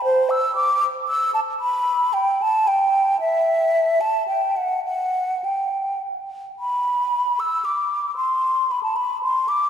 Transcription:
0, 0, Header, 1, 2, 480
1, 0, Start_track
1, 0, Key_signature, 1, "major"
1, 0, Tempo, 526316
1, 40, Time_signature, 3, 2, 24, 8
1, 3401, Tempo, 543971
1, 3881, Tempo, 576369
1, 5801, Tempo, 530035
1, 8623, End_track
2, 0, Start_track
2, 0, Title_t, "Flute"
2, 0, Program_c, 0, 73
2, 36, Note_on_c, 0, 72, 81
2, 273, Note_on_c, 0, 88, 79
2, 286, Note_off_c, 0, 72, 0
2, 502, Note_off_c, 0, 88, 0
2, 507, Note_on_c, 0, 86, 76
2, 771, Note_off_c, 0, 86, 0
2, 987, Note_on_c, 0, 88, 87
2, 1213, Note_off_c, 0, 88, 0
2, 1224, Note_on_c, 0, 81, 84
2, 1278, Note_off_c, 0, 81, 0
2, 1465, Note_on_c, 0, 83, 76
2, 1945, Note_on_c, 0, 79, 80
2, 1958, Note_off_c, 0, 83, 0
2, 2206, Note_on_c, 0, 81, 83
2, 2220, Note_off_c, 0, 79, 0
2, 2440, Note_on_c, 0, 79, 80
2, 2454, Note_off_c, 0, 81, 0
2, 2916, Note_off_c, 0, 79, 0
2, 2921, Note_on_c, 0, 76, 86
2, 3647, Note_on_c, 0, 81, 73
2, 3660, Note_off_c, 0, 76, 0
2, 3877, Note_off_c, 0, 81, 0
2, 3882, Note_on_c, 0, 79, 63
2, 4125, Note_on_c, 0, 78, 65
2, 4138, Note_off_c, 0, 79, 0
2, 4355, Note_off_c, 0, 78, 0
2, 4360, Note_on_c, 0, 78, 66
2, 4856, Note_on_c, 0, 79, 51
2, 4868, Note_off_c, 0, 78, 0
2, 5329, Note_off_c, 0, 79, 0
2, 5813, Note_on_c, 0, 83, 73
2, 6543, Note_on_c, 0, 88, 78
2, 6557, Note_off_c, 0, 83, 0
2, 6769, Note_on_c, 0, 86, 63
2, 6782, Note_off_c, 0, 88, 0
2, 7228, Note_off_c, 0, 86, 0
2, 7234, Note_on_c, 0, 84, 74
2, 7733, Note_on_c, 0, 83, 68
2, 7747, Note_off_c, 0, 84, 0
2, 7835, Note_off_c, 0, 83, 0
2, 7841, Note_on_c, 0, 81, 67
2, 7959, Note_on_c, 0, 83, 70
2, 7972, Note_off_c, 0, 81, 0
2, 8196, Note_off_c, 0, 83, 0
2, 8201, Note_on_c, 0, 84, 69
2, 8432, Note_on_c, 0, 86, 75
2, 8446, Note_off_c, 0, 84, 0
2, 8623, Note_off_c, 0, 86, 0
2, 8623, End_track
0, 0, End_of_file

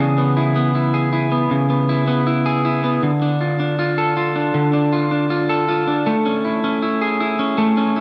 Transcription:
0, 0, Header, 1, 2, 480
1, 0, Start_track
1, 0, Tempo, 759494
1, 1911, Time_signature, 4, 2, 24, 8
1, 5059, End_track
2, 0, Start_track
2, 0, Title_t, "Clean electric guitar"
2, 0, Program_c, 0, 27
2, 0, Note_on_c, 0, 49, 75
2, 0, Note_on_c, 0, 52, 72
2, 0, Note_on_c, 0, 59, 59
2, 0, Note_on_c, 0, 68, 48
2, 109, Note_off_c, 0, 59, 0
2, 112, Note_on_c, 0, 59, 47
2, 232, Note_on_c, 0, 64, 52
2, 345, Note_off_c, 0, 59, 0
2, 352, Note_on_c, 0, 59, 51
2, 465, Note_off_c, 0, 64, 0
2, 473, Note_on_c, 0, 64, 48
2, 591, Note_off_c, 0, 68, 0
2, 593, Note_on_c, 0, 68, 48
2, 705, Note_off_c, 0, 64, 0
2, 712, Note_on_c, 0, 64, 50
2, 825, Note_off_c, 0, 59, 0
2, 832, Note_on_c, 0, 59, 49
2, 946, Note_off_c, 0, 49, 0
2, 953, Note_on_c, 0, 49, 72
2, 1065, Note_off_c, 0, 59, 0
2, 1072, Note_on_c, 0, 59, 50
2, 1188, Note_off_c, 0, 64, 0
2, 1195, Note_on_c, 0, 64, 49
2, 1242, Note_off_c, 0, 52, 0
2, 1303, Note_off_c, 0, 59, 0
2, 1311, Note_on_c, 0, 59, 52
2, 1425, Note_off_c, 0, 64, 0
2, 1433, Note_on_c, 0, 64, 57
2, 1545, Note_off_c, 0, 68, 0
2, 1553, Note_on_c, 0, 68, 60
2, 1666, Note_off_c, 0, 64, 0
2, 1674, Note_on_c, 0, 64, 47
2, 1786, Note_off_c, 0, 59, 0
2, 1794, Note_on_c, 0, 59, 49
2, 1910, Note_off_c, 0, 49, 0
2, 1913, Note_on_c, 0, 50, 67
2, 1960, Note_off_c, 0, 64, 0
2, 1960, Note_off_c, 0, 68, 0
2, 1961, Note_off_c, 0, 59, 0
2, 2034, Note_on_c, 0, 62, 48
2, 2153, Note_on_c, 0, 65, 52
2, 2266, Note_off_c, 0, 62, 0
2, 2273, Note_on_c, 0, 62, 51
2, 2387, Note_off_c, 0, 65, 0
2, 2394, Note_on_c, 0, 65, 52
2, 2514, Note_on_c, 0, 69, 57
2, 2626, Note_off_c, 0, 65, 0
2, 2634, Note_on_c, 0, 65, 50
2, 2745, Note_off_c, 0, 62, 0
2, 2753, Note_on_c, 0, 62, 49
2, 2863, Note_off_c, 0, 50, 0
2, 2870, Note_on_c, 0, 50, 70
2, 2984, Note_off_c, 0, 62, 0
2, 2991, Note_on_c, 0, 62, 52
2, 3104, Note_off_c, 0, 65, 0
2, 3112, Note_on_c, 0, 65, 53
2, 3223, Note_off_c, 0, 62, 0
2, 3231, Note_on_c, 0, 62, 47
2, 3344, Note_off_c, 0, 65, 0
2, 3351, Note_on_c, 0, 65, 52
2, 3469, Note_off_c, 0, 69, 0
2, 3472, Note_on_c, 0, 69, 61
2, 3585, Note_off_c, 0, 65, 0
2, 3592, Note_on_c, 0, 65, 55
2, 3706, Note_off_c, 0, 62, 0
2, 3713, Note_on_c, 0, 62, 52
2, 3832, Note_on_c, 0, 57, 73
2, 3879, Note_off_c, 0, 50, 0
2, 3880, Note_off_c, 0, 62, 0
2, 3880, Note_off_c, 0, 65, 0
2, 3953, Note_on_c, 0, 61, 50
2, 4074, Note_on_c, 0, 64, 52
2, 4188, Note_off_c, 0, 61, 0
2, 4196, Note_on_c, 0, 61, 52
2, 4310, Note_off_c, 0, 64, 0
2, 4312, Note_on_c, 0, 64, 50
2, 4431, Note_off_c, 0, 69, 0
2, 4433, Note_on_c, 0, 68, 54
2, 4550, Note_off_c, 0, 64, 0
2, 4553, Note_on_c, 0, 64, 51
2, 4663, Note_off_c, 0, 61, 0
2, 4671, Note_on_c, 0, 61, 51
2, 4782, Note_off_c, 0, 57, 0
2, 4790, Note_on_c, 0, 57, 74
2, 4903, Note_off_c, 0, 61, 0
2, 4911, Note_on_c, 0, 61, 53
2, 5029, Note_off_c, 0, 64, 0
2, 5032, Note_on_c, 0, 64, 48
2, 5059, Note_off_c, 0, 57, 0
2, 5059, Note_off_c, 0, 61, 0
2, 5059, Note_off_c, 0, 64, 0
2, 5059, Note_off_c, 0, 68, 0
2, 5059, End_track
0, 0, End_of_file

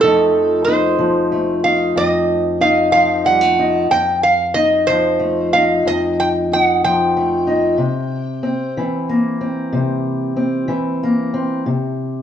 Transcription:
0, 0, Header, 1, 3, 480
1, 0, Start_track
1, 0, Tempo, 648649
1, 9, Time_signature, 12, 3, 24, 8
1, 9044, End_track
2, 0, Start_track
2, 0, Title_t, "Resonator guitar played with a steel bar"
2, 0, Program_c, 0, 25
2, 6, Note_on_c, 0, 69, 79
2, 457, Note_off_c, 0, 69, 0
2, 478, Note_on_c, 0, 72, 74
2, 1172, Note_off_c, 0, 72, 0
2, 1213, Note_on_c, 0, 77, 80
2, 1457, Note_off_c, 0, 77, 0
2, 1461, Note_on_c, 0, 75, 91
2, 1904, Note_off_c, 0, 75, 0
2, 1934, Note_on_c, 0, 77, 90
2, 2153, Note_off_c, 0, 77, 0
2, 2162, Note_on_c, 0, 77, 91
2, 2387, Note_off_c, 0, 77, 0
2, 2411, Note_on_c, 0, 78, 88
2, 2858, Note_off_c, 0, 78, 0
2, 2894, Note_on_c, 0, 79, 92
2, 3130, Note_off_c, 0, 79, 0
2, 3133, Note_on_c, 0, 77, 93
2, 3361, Note_on_c, 0, 75, 94
2, 3376, Note_off_c, 0, 77, 0
2, 3603, Note_on_c, 0, 72, 90
2, 3610, Note_off_c, 0, 75, 0
2, 4093, Note_on_c, 0, 77, 86
2, 4098, Note_off_c, 0, 72, 0
2, 4335, Note_off_c, 0, 77, 0
2, 4347, Note_on_c, 0, 75, 79
2, 4582, Note_off_c, 0, 75, 0
2, 4586, Note_on_c, 0, 79, 90
2, 4648, Note_off_c, 0, 79, 0
2, 4835, Note_on_c, 0, 78, 84
2, 5062, Note_off_c, 0, 78, 0
2, 5065, Note_on_c, 0, 79, 88
2, 6465, Note_off_c, 0, 79, 0
2, 9044, End_track
3, 0, Start_track
3, 0, Title_t, "Steel-string acoustic guitar"
3, 0, Program_c, 1, 25
3, 16, Note_on_c, 1, 41, 71
3, 20, Note_on_c, 1, 53, 58
3, 26, Note_on_c, 1, 57, 60
3, 26, Note_on_c, 1, 63, 59
3, 497, Note_off_c, 1, 63, 0
3, 500, Note_on_c, 1, 63, 64
3, 727, Note_off_c, 1, 53, 0
3, 730, Note_on_c, 1, 53, 64
3, 973, Note_off_c, 1, 57, 0
3, 976, Note_on_c, 1, 57, 50
3, 1208, Note_off_c, 1, 63, 0
3, 1211, Note_on_c, 1, 63, 57
3, 1447, Note_off_c, 1, 41, 0
3, 1450, Note_on_c, 1, 41, 73
3, 1920, Note_off_c, 1, 63, 0
3, 1929, Note_on_c, 1, 63, 65
3, 2152, Note_off_c, 1, 53, 0
3, 2161, Note_on_c, 1, 53, 66
3, 2399, Note_off_c, 1, 57, 0
3, 2402, Note_on_c, 1, 55, 59
3, 2523, Note_off_c, 1, 55, 0
3, 2523, Note_on_c, 1, 57, 47
3, 2647, Note_off_c, 1, 63, 0
3, 2657, Note_on_c, 1, 63, 54
3, 2854, Note_off_c, 1, 53, 0
3, 2858, Note_off_c, 1, 41, 0
3, 2862, Note_off_c, 1, 63, 0
3, 2884, Note_off_c, 1, 57, 0
3, 2891, Note_on_c, 1, 41, 73
3, 3364, Note_on_c, 1, 63, 62
3, 3621, Note_on_c, 1, 53, 60
3, 3845, Note_on_c, 1, 57, 54
3, 4084, Note_off_c, 1, 63, 0
3, 4098, Note_on_c, 1, 63, 54
3, 4323, Note_off_c, 1, 41, 0
3, 4332, Note_on_c, 1, 41, 69
3, 4811, Note_off_c, 1, 63, 0
3, 4823, Note_on_c, 1, 63, 54
3, 5052, Note_off_c, 1, 53, 0
3, 5067, Note_on_c, 1, 53, 65
3, 5284, Note_off_c, 1, 57, 0
3, 5305, Note_on_c, 1, 57, 61
3, 5519, Note_off_c, 1, 63, 0
3, 5528, Note_on_c, 1, 63, 60
3, 5737, Note_off_c, 1, 63, 0
3, 5739, Note_off_c, 1, 41, 0
3, 5746, Note_off_c, 1, 57, 0
3, 5747, Note_off_c, 1, 53, 0
3, 5755, Note_on_c, 1, 48, 67
3, 6238, Note_on_c, 1, 60, 58
3, 6480, Note_off_c, 1, 48, 0
3, 6491, Note_on_c, 1, 52, 71
3, 6729, Note_on_c, 1, 58, 55
3, 6959, Note_off_c, 1, 60, 0
3, 6962, Note_on_c, 1, 60, 52
3, 7197, Note_on_c, 1, 48, 73
3, 7661, Note_off_c, 1, 60, 0
3, 7670, Note_on_c, 1, 60, 55
3, 7892, Note_off_c, 1, 52, 0
3, 7901, Note_on_c, 1, 52, 67
3, 7922, Note_off_c, 1, 48, 0
3, 8156, Note_off_c, 1, 58, 0
3, 8165, Note_on_c, 1, 58, 58
3, 8381, Note_off_c, 1, 60, 0
3, 8390, Note_on_c, 1, 60, 53
3, 8605, Note_off_c, 1, 52, 0
3, 8609, Note_off_c, 1, 60, 0
3, 8617, Note_off_c, 1, 58, 0
3, 8629, Note_on_c, 1, 48, 63
3, 9044, Note_off_c, 1, 48, 0
3, 9044, End_track
0, 0, End_of_file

